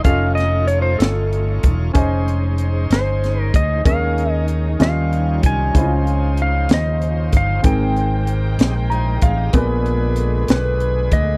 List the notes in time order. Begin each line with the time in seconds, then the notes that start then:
Already playing: D#4
0.03 F1 A3 C#4 D#4 F4 A4 C#5 F5, kick, closed hi-hat
0.08 D#5
0.35 D#5, snare, closed hi-hat
0.67 C#5, closed hi-hat
0.82 C5
0.99 G1 A4, snare, closed hi-hat
1.33 closed hi-hat
1.63 E1, kick, closed hi-hat
1.93 F1 G#3 C#4 D#4 G#4 C5 D#5, kick, closed hi-hat
2.28 closed hi-hat
2.58 closed hi-hat
2.90 G1 C5, snare, closed hi-hat
3.24 snare, closed hi-hat
3.42 A#4
3.54 D2 D#5, kick, closed hi-hat
3.83 D#2 D#3 G#3 A#3 C#4 D#4 G#4 A#4 D#5 F5, kick, closed hi-hat
3.93 A#4
4.18 closed hi-hat
4.32 D#5
4.48 closed hi-hat
4.79 D#2 D#3 F3 G3 C#4 D#4 F4 C#5 D#5 F5, snare, closed hi-hat
5.13 closed hi-hat
5.43 C2 G#5, kick, closed hi-hat
5.73 C#2 C#3 F3 C#4 D#4 E4 C5, kick, closed hi-hat
5.77 D#5
5.81 F4
6.07 closed hi-hat
6.37 closed hi-hat
6.42 F5
6.69 D#2, snare, closed hi-hat
6.74 D#5
7.02 closed hi-hat
7.33 G1, kick, closed hi-hat
7.37 F5
7.62 G#1 G#2 G#3 C4 G#4 A#4 G5, kick, closed hi-hat
7.67 G5
7.96 closed hi-hat
8.27 closed hi-hat
8.59 A#1 G4 D#5, snare, closed hi-hat
8.76 A#4 G5
8.90 C5 D#5 G#5 A#5, closed hi-hat
9.07 A#4 G5
9.22 A1 G#4 F5 A#5, kick, closed hi-hat
9.37 G4 D#5
9.52 A#1 A#2 D3 G#3 A#3 B3 G#4 B4, kick, closed hi-hat
9.57 B4
9.86 closed hi-hat
10.16 closed hi-hat
10.48 B1 B4, snare, closed hi-hat
10.80 closed hi-hat
11.12 D2 D#5, kick, closed hi-hat